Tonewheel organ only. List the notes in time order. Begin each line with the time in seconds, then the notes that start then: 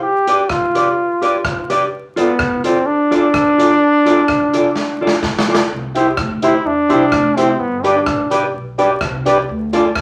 5.95 E4 G4 C5 E5
6.42 E4 G4 C5 E5
6.89 E4 G4 C5 E5
7.36 E4 G4 C5 E5
7.84 D4 G4 B4 D5
8.30 D4 G4 B4 D5
8.78 D4 G4 B4 D5
9.26 D4 G4 B4 D5
9.73 D4 F4 A4 D5